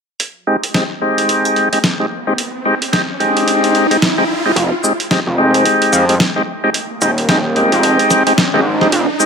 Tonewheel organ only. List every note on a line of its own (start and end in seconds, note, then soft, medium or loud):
0.47 0.56 G#3 medium
0.47 0.56 C4 medium
0.47 0.56 D#4 medium
0.47 0.56 G4 medium
0.74 0.84 G#3 medium
0.74 0.84 C4 medium
0.74 0.84 D#4 medium
0.74 0.84 G4 loud
1.02 1.69 G#3 medium
1.02 1.69 C4 medium
1.02 1.69 D#4 medium
1.02 1.69 G4 medium
1.72 1.79 G#3 medium
1.72 1.79 C4 medium
1.72 1.79 D#4 medium
1.72 1.79 G4 medium
2.00 2.06 G#3 medium
2.00 2.06 C4 medium
2.00 2.06 D#4 medium
2.00 2.06 G4 loud
2.27 2.33 G#3 medium
2.27 2.33 C4 medium
2.27 2.33 D#4 medium
2.27 2.33 G4 loud
2.65 2.75 G#3 medium
2.65 2.75 C4 medium
2.65 2.75 D#4 medium
2.65 2.75 G4 loud
2.93 3.02 G#3 medium
2.93 3.02 C4 medium
2.93 3.02 D#4 medium
2.93 3.02 G4 loud
3.20 3.87 G#3 medium
3.20 3.87 C4 medium
3.20 3.87 D#4 medium
3.20 3.87 G4 medium
3.91 3.97 G#3 medium
3.91 3.97 C4 medium
3.91 3.97 D#4 medium
3.91 3.97 G4 loud
4.18 4.24 G#3 loud
4.18 4.24 C4 medium
4.18 4.24 D#4 medium
4.18 4.24 G4 loud
4.45 4.52 G#3 medium
4.45 4.52 C4 medium
4.45 4.52 D#4 medium
4.45 4.52 G4 loud
4.83 4.93 G#3 medium
4.83 4.93 C4 medium
4.83 4.93 D#4 medium
4.83 4.93 G4 loud
5.11 5.20 G#3 medium
5.11 5.20 C4 medium
5.11 5.20 D#4 medium
5.11 5.20 G4 loud
5.38 6.05 G#3 medium
5.38 6.05 C4 medium
5.38 6.05 D#4 medium
5.38 6.05 G4 medium
6.09 6.15 G#3 medium
6.09 6.15 C4 medium
6.09 6.15 D#4 medium
6.09 6.15 G4 loud
6.36 6.42 G#3 loud
6.36 6.42 C4 medium
6.36 6.42 D#4 medium
6.36 6.42 G4 loud
6.64 6.70 G#3 medium
6.64 6.70 C4 medium
6.64 6.70 D#4 medium
6.64 6.70 G4 loud
7.02 7.11 G#3 medium
7.02 7.11 C4 medium
7.02 7.11 D#4 medium
7.02 7.11 G4 loud
7.29 7.38 G#3 loud
7.29 7.38 C4 medium
7.29 7.38 D#4 medium
7.29 7.38 G4 loud
7.56 8.23 G#3 medium
7.56 8.23 C4 medium
7.56 8.23 D#4 medium
7.56 8.23 G4 medium
8.27 8.33 G#3 medium
8.27 8.33 C4 medium
8.27 8.33 D#4 medium
8.27 8.33 G4 loud
8.54 8.61 G#3 loud
8.54 8.61 C4 medium
8.54 8.61 D#4 medium
8.54 8.61 G4 loud
8.81 8.88 G#3 medium
8.81 8.88 C4 medium
8.81 8.88 D#4 medium
8.81 8.88 G4 loud
9.20 9.26 G#3 medium
9.20 9.26 C4 medium
9.20 9.26 D#4 medium
9.20 9.26 G4 medium